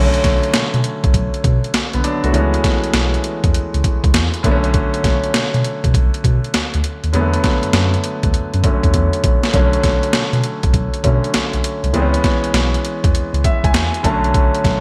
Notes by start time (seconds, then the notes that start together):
Already playing: B1 F#3 A3 C#4
0.00 D3
0.14 closed hi-hat
0.24 B1, kick, snare, closed hi-hat
0.43 closed hi-hat
0.54 B2, snare, closed hi-hat
0.74 B2, closed hi-hat
0.84 closed hi-hat
1.04 B1, kick, closed hi-hat
1.14 B1, kick, closed hi-hat
1.34 closed hi-hat
1.44 B2, kick, closed hi-hat
1.64 closed hi-hat
1.74 B1, snare, closed hi-hat
1.93 B1 D3 B3, closed hi-hat
2.04 F#3 D4, closed hi-hat
2.24 C2 A3 F#4, closed hi-hat
2.33 C#2 E3 G#3 B3 C#4, closed hi-hat
2.54 closed hi-hat
2.64 kick, snare, closed hi-hat
2.84 B1, closed hi-hat
2.94 B1, snare, closed hi-hat
3.14 closed hi-hat
3.24 closed hi-hat
3.44 E2, kick, closed hi-hat
3.54 C#2, closed hi-hat
3.74 C#2, closed hi-hat
3.84 kick, closed hi-hat
4.04 C#2, kick, closed hi-hat
4.14 E2, snare, closed hi-hat
4.34 closed hi-hat
4.43 B1 D3 F#3 A3 B3, kick, closed hi-hat
4.52 C#4
4.64 closed hi-hat
4.74 kick, closed hi-hat
4.94 closed hi-hat
5.04 B1, kick, snare, closed hi-hat
5.24 closed hi-hat
5.34 B2, snare, closed hi-hat
5.54 B2, closed hi-hat
5.64 closed hi-hat
5.84 B2, kick, closed hi-hat
5.94 B1, kick, closed hi-hat
6.14 closed hi-hat
6.24 B2, kick, closed hi-hat
6.44 closed hi-hat
6.54 D2, snare, closed hi-hat
6.74 D2, closed hi-hat
6.84 closed hi-hat
7.04 D#2, closed hi-hat
7.13 E2 D3 F#3 G#3 B3, closed hi-hat
7.21 A3
7.34 closed hi-hat
7.44 kick, snare, closed hi-hat
7.63 F#2, closed hi-hat
7.73 F#2, snare, closed hi-hat
7.94 closed hi-hat
8.04 closed hi-hat
8.23 D2, kick, closed hi-hat
8.34 F#2, closed hi-hat
8.54 F#2, closed hi-hat
8.63 D3 F#3 A3 C#4, kick, closed hi-hat
8.83 E2, kick, closed hi-hat
8.94 E2, kick, closed hi-hat
9.13 closed hi-hat
9.24 A#1, kick, closed hi-hat
9.43 snare, closed hi-hat
9.53 B1 D3 F#3 A3 C#4, kick, closed hi-hat
9.73 closed hi-hat
9.83 B1, kick, snare, closed hi-hat
10.03 closed hi-hat
10.13 B2, snare, closed hi-hat
10.33 B2, closed hi-hat
10.44 closed hi-hat
10.63 B1, kick, closed hi-hat
10.74 B1, kick, closed hi-hat
10.94 closed hi-hat
11.04 B2 D3 F#3 A3 C#4, kick, closed hi-hat
11.24 closed hi-hat
11.34 B1, snare, closed hi-hat
11.53 B1, closed hi-hat
11.64 closed hi-hat
11.84 C2, closed hi-hat
11.93 C#2 E3 G#3 B3 C4, closed hi-hat
12.02 C#4
12.14 closed hi-hat
12.24 kick, snare, closed hi-hat
12.44 B1, closed hi-hat
12.54 B1, snare, closed hi-hat
12.74 closed hi-hat
12.85 closed hi-hat
13.04 E2, kick, closed hi-hat
13.14 C#2, closed hi-hat
13.34 C#2, closed hi-hat
13.44 E5, kick, closed hi-hat
13.64 C#2 G#5, kick, closed hi-hat
13.74 E2 G#5, snare, closed hi-hat
13.94 closed hi-hat
14.03 B1 D3 F#3 A3 C#4 A5, kick, closed hi-hat
14.24 closed hi-hat
14.34 kick, closed hi-hat
14.55 closed hi-hat
14.64 B1, kick, snare, closed hi-hat